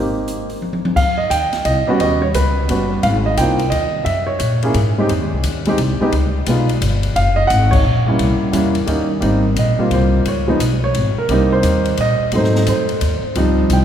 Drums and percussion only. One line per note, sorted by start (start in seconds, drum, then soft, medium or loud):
0.28 closed hi-hat soft
0.50 open hi-hat soft
0.62 high tom soft
0.73 high tom medium
0.85 high tom medium
0.96 kick medium
0.96 crash medium
1.31 kick soft
1.31 hi-hat pedal medium
1.31 ride medium
1.53 snare soft
1.53 ride soft
1.65 kick soft
1.65 ride medium
2.00 kick soft
2.00 ride medium
2.34 kick soft
2.34 hi-hat pedal medium
2.34 ride medium
2.69 kick soft
2.69 ride medium
3.03 kick soft
3.03 ride medium
3.37 kick soft
3.37 hi-hat pedal medium
3.37 ride medium
3.59 ride soft
3.72 kick soft
3.72 ride medium
4.06 kick soft
4.06 ride medium
4.40 kick soft
4.40 hi-hat pedal medium
4.40 ride medium
4.63 ride soft
4.74 kick soft
4.74 ride medium
5.09 kick soft
5.09 ride medium
5.44 kick soft
5.44 hi-hat pedal medium
5.44 ride medium
5.65 ride soft
5.78 kick soft
5.78 ride medium
6.12 kick soft
6.12 ride medium
6.46 kick soft
6.46 hi-hat pedal medium
6.46 ride medium
6.69 ride soft
6.82 kick soft
6.82 hi-hat pedal medium
6.82 ride medium
7.03 ride soft
7.16 kick soft
7.16 ride medium
7.50 kick soft
7.50 hi-hat pedal medium
7.50 ride medium
7.73 kick medium
7.73 crash medium
8.19 kick soft
8.19 ride medium
8.53 kick soft
8.53 hi-hat pedal medium
8.53 ride medium
8.75 ride soft
8.87 kick soft
8.87 ride medium
9.22 kick soft
9.22 ride medium
9.56 kick soft
9.56 hi-hat pedal soft
9.56 ride medium
9.91 kick soft
9.91 ride medium
10.25 kick soft
10.25 ride medium
10.60 kick soft
10.60 hi-hat pedal medium
10.60 ride medium
10.94 kick soft
10.94 ride medium
11.29 kick soft
11.29 ride medium
11.63 kick soft
11.63 hi-hat pedal medium
11.63 ride medium
11.85 ride soft
11.97 kick soft
11.97 ride medium
12.32 kick soft
12.32 ride medium
12.44 snare soft
12.55 snare soft
12.67 kick soft
12.67 hi-hat pedal medium
12.67 ride medium
12.89 ride soft
13.01 kick soft
13.01 ride medium
13.35 kick soft
13.35 ride medium
13.70 kick soft
13.70 hi-hat pedal medium
13.70 ride medium